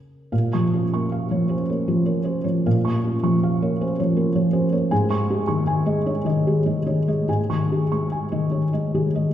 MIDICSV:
0, 0, Header, 1, 2, 480
1, 0, Start_track
1, 0, Key_signature, -5, "minor"
1, 0, Tempo, 780234
1, 201, Time_signature, 3, 2, 24, 8
1, 1634, Tempo, 752823
1, 3554, Tempo, 785340
1, 4034, Tempo, 825309
1, 5712, End_track
2, 0, Start_track
2, 0, Title_t, "Felt piano"
2, 0, Program_c, 0, 0
2, 0, Control_c, 0, 64, 127
2, 0, Note_on_c, 0, 49, 32
2, 0, Note_on_c, 0, 58, 31
2, 182, Note_off_c, 0, 49, 0
2, 184, Note_off_c, 0, 58, 0
2, 198, Note_on_c, 0, 46, 41
2, 198, Note_on_c, 0, 77, 37
2, 213, Control_c, 0, 64, 0
2, 308, Control_c, 0, 64, 127
2, 328, Note_on_c, 0, 85, 37
2, 332, Note_on_c, 0, 53, 34
2, 392, Note_off_c, 0, 77, 0
2, 447, Note_on_c, 0, 61, 28
2, 453, Note_on_c, 0, 65, 32
2, 517, Note_off_c, 0, 85, 0
2, 518, Note_off_c, 0, 53, 0
2, 552, Note_off_c, 0, 61, 0
2, 576, Note_on_c, 0, 85, 36
2, 579, Note_on_c, 0, 58, 33
2, 639, Note_off_c, 0, 65, 0
2, 689, Note_on_c, 0, 77, 35
2, 759, Note_off_c, 0, 85, 0
2, 803, Note_on_c, 0, 53, 36
2, 807, Note_on_c, 0, 73, 36
2, 875, Note_off_c, 0, 77, 0
2, 916, Note_on_c, 0, 72, 31
2, 919, Note_on_c, 0, 61, 34
2, 951, Note_off_c, 0, 58, 0
2, 991, Note_off_c, 0, 53, 0
2, 993, Note_off_c, 0, 73, 0
2, 1026, Note_off_c, 0, 61, 0
2, 1036, Note_off_c, 0, 72, 0
2, 1042, Note_on_c, 0, 58, 32
2, 1042, Note_on_c, 0, 73, 35
2, 1156, Note_on_c, 0, 65, 37
2, 1157, Note_on_c, 0, 53, 33
2, 1231, Note_off_c, 0, 58, 0
2, 1232, Note_off_c, 0, 73, 0
2, 1267, Note_on_c, 0, 58, 34
2, 1267, Note_on_c, 0, 73, 34
2, 1348, Note_off_c, 0, 65, 0
2, 1349, Note_off_c, 0, 53, 0
2, 1381, Note_on_c, 0, 72, 35
2, 1384, Note_on_c, 0, 61, 33
2, 1464, Note_off_c, 0, 58, 0
2, 1464, Note_off_c, 0, 73, 0
2, 1498, Note_off_c, 0, 61, 0
2, 1503, Note_on_c, 0, 73, 38
2, 1504, Note_on_c, 0, 53, 32
2, 1509, Note_off_c, 0, 72, 0
2, 1610, Note_off_c, 0, 46, 0
2, 1638, Note_on_c, 0, 46, 51
2, 1639, Note_on_c, 0, 77, 44
2, 1647, Control_c, 0, 64, 0
2, 1701, Note_off_c, 0, 73, 0
2, 1702, Note_off_c, 0, 53, 0
2, 1756, Note_on_c, 0, 85, 41
2, 1758, Note_on_c, 0, 58, 40
2, 1760, Control_c, 0, 64, 127
2, 1831, Note_off_c, 0, 77, 0
2, 1879, Note_on_c, 0, 65, 37
2, 1883, Note_on_c, 0, 61, 32
2, 1949, Note_off_c, 0, 85, 0
2, 1950, Note_off_c, 0, 58, 0
2, 1988, Note_off_c, 0, 61, 0
2, 2001, Note_on_c, 0, 53, 36
2, 2004, Note_on_c, 0, 85, 41
2, 2070, Note_off_c, 0, 65, 0
2, 2129, Note_on_c, 0, 77, 43
2, 2192, Note_off_c, 0, 85, 0
2, 2250, Note_on_c, 0, 58, 41
2, 2251, Note_on_c, 0, 73, 46
2, 2315, Note_off_c, 0, 77, 0
2, 2370, Note_on_c, 0, 61, 38
2, 2373, Note_on_c, 0, 72, 40
2, 2383, Note_off_c, 0, 53, 0
2, 2435, Note_off_c, 0, 58, 0
2, 2436, Note_off_c, 0, 73, 0
2, 2472, Note_off_c, 0, 61, 0
2, 2484, Note_off_c, 0, 72, 0
2, 2488, Note_on_c, 0, 73, 42
2, 2490, Note_on_c, 0, 53, 42
2, 2596, Note_on_c, 0, 58, 42
2, 2598, Note_on_c, 0, 65, 46
2, 2673, Note_off_c, 0, 73, 0
2, 2674, Note_off_c, 0, 53, 0
2, 2715, Note_on_c, 0, 53, 42
2, 2717, Note_on_c, 0, 73, 44
2, 2786, Note_off_c, 0, 58, 0
2, 2787, Note_off_c, 0, 65, 0
2, 2826, Note_on_c, 0, 61, 39
2, 2830, Note_on_c, 0, 72, 41
2, 2905, Note_off_c, 0, 53, 0
2, 2906, Note_off_c, 0, 73, 0
2, 2936, Note_off_c, 0, 61, 0
2, 2950, Note_off_c, 0, 72, 0
2, 2951, Note_on_c, 0, 58, 42
2, 2953, Note_on_c, 0, 73, 45
2, 3047, Note_off_c, 0, 46, 0
2, 3071, Note_off_c, 0, 58, 0
2, 3072, Note_off_c, 0, 73, 0
2, 3072, Note_on_c, 0, 80, 58
2, 3075, Note_on_c, 0, 44, 61
2, 3083, Control_c, 0, 64, 0
2, 3174, Control_c, 0, 64, 127
2, 3194, Note_on_c, 0, 56, 47
2, 3195, Note_on_c, 0, 85, 54
2, 3264, Note_off_c, 0, 80, 0
2, 3319, Note_on_c, 0, 63, 40
2, 3322, Note_on_c, 0, 68, 45
2, 3386, Note_off_c, 0, 56, 0
2, 3386, Note_off_c, 0, 85, 0
2, 3425, Note_off_c, 0, 63, 0
2, 3431, Note_on_c, 0, 85, 50
2, 3436, Note_on_c, 0, 51, 45
2, 3512, Note_off_c, 0, 68, 0
2, 3557, Note_on_c, 0, 80, 56
2, 3625, Note_off_c, 0, 85, 0
2, 3670, Note_on_c, 0, 56, 47
2, 3673, Note_on_c, 0, 75, 54
2, 3746, Note_off_c, 0, 80, 0
2, 3795, Note_on_c, 0, 73, 43
2, 3797, Note_on_c, 0, 63, 46
2, 3819, Note_off_c, 0, 51, 0
2, 3863, Note_off_c, 0, 56, 0
2, 3865, Note_off_c, 0, 75, 0
2, 3903, Note_off_c, 0, 63, 0
2, 3909, Note_on_c, 0, 51, 44
2, 3915, Note_off_c, 0, 73, 0
2, 3915, Note_on_c, 0, 75, 48
2, 4044, Note_on_c, 0, 68, 48
2, 4046, Note_on_c, 0, 56, 43
2, 4103, Note_off_c, 0, 51, 0
2, 4106, Note_off_c, 0, 75, 0
2, 4154, Note_on_c, 0, 51, 42
2, 4154, Note_on_c, 0, 75, 44
2, 4227, Note_off_c, 0, 68, 0
2, 4228, Note_off_c, 0, 56, 0
2, 4272, Note_on_c, 0, 63, 42
2, 4275, Note_on_c, 0, 73, 37
2, 4343, Note_off_c, 0, 51, 0
2, 4343, Note_off_c, 0, 75, 0
2, 4379, Note_off_c, 0, 63, 0
2, 4392, Note_off_c, 0, 73, 0
2, 4395, Note_on_c, 0, 56, 40
2, 4401, Note_on_c, 0, 75, 39
2, 4489, Note_off_c, 0, 44, 0
2, 4517, Note_on_c, 0, 44, 52
2, 4521, Note_on_c, 0, 80, 46
2, 4523, Control_c, 0, 64, 0
2, 4586, Note_off_c, 0, 56, 0
2, 4589, Note_off_c, 0, 75, 0
2, 4637, Control_c, 0, 64, 127
2, 4641, Note_on_c, 0, 51, 38
2, 4642, Note_on_c, 0, 85, 42
2, 4710, Note_off_c, 0, 80, 0
2, 4769, Note_on_c, 0, 63, 34
2, 4773, Note_on_c, 0, 68, 35
2, 4830, Note_off_c, 0, 51, 0
2, 4831, Note_off_c, 0, 85, 0
2, 4870, Note_off_c, 0, 63, 0
2, 4886, Note_on_c, 0, 85, 37
2, 4888, Note_on_c, 0, 56, 34
2, 4956, Note_off_c, 0, 68, 0
2, 5003, Note_on_c, 0, 80, 37
2, 5072, Note_off_c, 0, 85, 0
2, 5119, Note_on_c, 0, 75, 38
2, 5121, Note_on_c, 0, 51, 37
2, 5190, Note_off_c, 0, 80, 0
2, 5232, Note_on_c, 0, 63, 35
2, 5232, Note_on_c, 0, 73, 32
2, 5265, Note_off_c, 0, 56, 0
2, 5308, Note_off_c, 0, 75, 0
2, 5309, Note_off_c, 0, 51, 0
2, 5340, Note_off_c, 0, 63, 0
2, 5352, Note_off_c, 0, 73, 0
2, 5359, Note_on_c, 0, 75, 39
2, 5362, Note_on_c, 0, 56, 34
2, 5482, Note_on_c, 0, 51, 38
2, 5484, Note_on_c, 0, 68, 37
2, 5548, Note_off_c, 0, 75, 0
2, 5549, Note_off_c, 0, 56, 0
2, 5605, Note_on_c, 0, 75, 36
2, 5606, Note_on_c, 0, 56, 32
2, 5671, Note_off_c, 0, 51, 0
2, 5672, Note_off_c, 0, 68, 0
2, 5712, Note_off_c, 0, 44, 0
2, 5712, Note_off_c, 0, 56, 0
2, 5712, Note_off_c, 0, 75, 0
2, 5712, End_track
0, 0, End_of_file